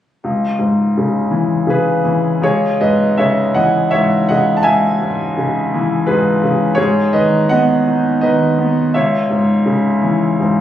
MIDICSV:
0, 0, Header, 1, 2, 480
1, 0, Start_track
1, 0, Key_signature, 4, "minor"
1, 0, Tempo, 736196
1, 150, Time_signature, 3, 2, 24, 8
1, 3027, Tempo, 713436
1, 5907, Tempo, 741656
1, 6997, End_track
2, 0, Start_track
2, 0, Title_t, "Grand piano"
2, 0, Program_c, 0, 0
2, 157, Note_on_c, 0, 37, 33
2, 277, Control_c, 0, 64, 127
2, 384, Note_on_c, 0, 44, 25
2, 635, Note_on_c, 0, 49, 31
2, 854, Note_on_c, 0, 52, 34
2, 1079, Note_off_c, 0, 49, 0
2, 1089, Note_on_c, 0, 49, 38
2, 1107, Note_on_c, 0, 68, 43
2, 1110, Note_on_c, 0, 71, 49
2, 1307, Note_off_c, 0, 44, 0
2, 1326, Note_off_c, 0, 52, 0
2, 1336, Note_on_c, 0, 52, 38
2, 1556, Note_off_c, 0, 37, 0
2, 1557, Note_off_c, 0, 68, 0
2, 1558, Note_off_c, 0, 71, 0
2, 1559, Note_off_c, 0, 49, 0
2, 1571, Note_off_c, 0, 52, 0
2, 1575, Note_on_c, 0, 37, 45
2, 1587, Note_on_c, 0, 73, 64
2, 1588, Control_c, 0, 64, 0
2, 1590, Note_on_c, 0, 68, 49
2, 1714, Control_c, 0, 64, 127
2, 1811, Note_off_c, 0, 73, 0
2, 1812, Note_off_c, 0, 68, 0
2, 1831, Note_on_c, 0, 44, 35
2, 1831, Note_on_c, 0, 75, 62
2, 1836, Note_on_c, 0, 71, 45
2, 2057, Note_off_c, 0, 71, 0
2, 2070, Note_on_c, 0, 76, 59
2, 2076, Note_on_c, 0, 49, 38
2, 2078, Note_off_c, 0, 75, 0
2, 2081, Note_on_c, 0, 73, 44
2, 2300, Note_off_c, 0, 73, 0
2, 2311, Note_on_c, 0, 78, 66
2, 2318, Note_off_c, 0, 76, 0
2, 2318, Note_on_c, 0, 75, 50
2, 2319, Note_on_c, 0, 52, 39
2, 2538, Note_off_c, 0, 75, 0
2, 2547, Note_on_c, 0, 76, 65
2, 2553, Note_on_c, 0, 73, 53
2, 2558, Note_off_c, 0, 78, 0
2, 2562, Note_off_c, 0, 44, 0
2, 2571, Note_on_c, 0, 44, 42
2, 2774, Note_off_c, 0, 73, 0
2, 2794, Note_on_c, 0, 78, 67
2, 2795, Note_off_c, 0, 76, 0
2, 2797, Note_off_c, 0, 49, 0
2, 2800, Note_on_c, 0, 75, 47
2, 2806, Note_on_c, 0, 49, 38
2, 2974, Note_off_c, 0, 75, 0
2, 2978, Note_on_c, 0, 81, 56
2, 2991, Note_off_c, 0, 78, 0
2, 2999, Note_off_c, 0, 37, 0
2, 3017, Note_on_c, 0, 80, 82
2, 3025, Note_off_c, 0, 81, 0
2, 3025, Note_on_c, 0, 76, 56
2, 3041, Note_on_c, 0, 37, 51
2, 3248, Note_off_c, 0, 52, 0
2, 3267, Note_off_c, 0, 44, 0
2, 3277, Note_on_c, 0, 44, 35
2, 3509, Note_off_c, 0, 49, 0
2, 3519, Note_on_c, 0, 49, 40
2, 3767, Note_on_c, 0, 52, 44
2, 3959, Note_off_c, 0, 76, 0
2, 3985, Note_on_c, 0, 71, 64
2, 3989, Note_off_c, 0, 44, 0
2, 3993, Note_on_c, 0, 68, 47
2, 3999, Note_on_c, 0, 44, 42
2, 4011, Note_off_c, 0, 80, 0
2, 4225, Note_off_c, 0, 49, 0
2, 4235, Note_on_c, 0, 49, 40
2, 4440, Note_off_c, 0, 68, 0
2, 4443, Note_on_c, 0, 73, 73
2, 4444, Note_off_c, 0, 37, 0
2, 4453, Note_off_c, 0, 52, 0
2, 4454, Note_off_c, 0, 44, 0
2, 4461, Note_off_c, 0, 49, 0
2, 4462, Note_on_c, 0, 68, 57
2, 4464, Note_on_c, 0, 44, 55
2, 4473, Control_c, 0, 64, 0
2, 4477, Note_off_c, 0, 71, 0
2, 4593, Control_c, 0, 64, 127
2, 4674, Note_off_c, 0, 73, 0
2, 4684, Note_off_c, 0, 68, 0
2, 4700, Note_on_c, 0, 51, 43
2, 4700, Note_on_c, 0, 75, 66
2, 4706, Note_on_c, 0, 71, 52
2, 4929, Note_off_c, 0, 71, 0
2, 4945, Note_on_c, 0, 78, 76
2, 4946, Note_off_c, 0, 75, 0
2, 4956, Note_on_c, 0, 75, 55
2, 4957, Note_on_c, 0, 59, 44
2, 5202, Note_on_c, 0, 63, 38
2, 5401, Note_off_c, 0, 78, 0
2, 5407, Note_off_c, 0, 75, 0
2, 5429, Note_on_c, 0, 75, 59
2, 5432, Note_off_c, 0, 51, 0
2, 5441, Note_on_c, 0, 71, 51
2, 5442, Note_on_c, 0, 51, 41
2, 5670, Note_off_c, 0, 59, 0
2, 5680, Note_on_c, 0, 59, 41
2, 5882, Note_off_c, 0, 44, 0
2, 5889, Note_off_c, 0, 71, 0
2, 5895, Note_off_c, 0, 63, 0
2, 5902, Note_off_c, 0, 51, 0
2, 5908, Note_off_c, 0, 59, 0
2, 5916, Control_c, 0, 64, 0
2, 5919, Note_on_c, 0, 76, 59
2, 5923, Note_off_c, 0, 75, 0
2, 5925, Note_on_c, 0, 37, 52
2, 5928, Note_on_c, 0, 73, 47
2, 6036, Control_c, 0, 64, 127
2, 6153, Note_on_c, 0, 44, 37
2, 6382, Note_on_c, 0, 49, 40
2, 6621, Note_on_c, 0, 52, 35
2, 6853, Note_off_c, 0, 44, 0
2, 6863, Note_on_c, 0, 44, 40
2, 6997, Note_off_c, 0, 37, 0
2, 6997, Note_off_c, 0, 44, 0
2, 6997, Note_off_c, 0, 49, 0
2, 6997, Note_off_c, 0, 52, 0
2, 6997, Note_off_c, 0, 73, 0
2, 6997, Note_off_c, 0, 76, 0
2, 6997, End_track
0, 0, End_of_file